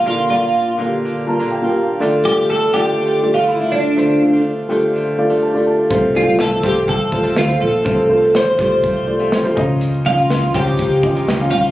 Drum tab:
HH |----------------|----------------|----------------|----------------|
SD |----------------|----------------|----------------|----o-------o---|
BD |----------------|----------------|----------------|o-----o-o-o-----|

HH |----------------|xxxxx-xxxxxxx-xx|
SD |----o-------o---|----o-------o---|
BD |o-----o-o-----o-|------o-o-o-----|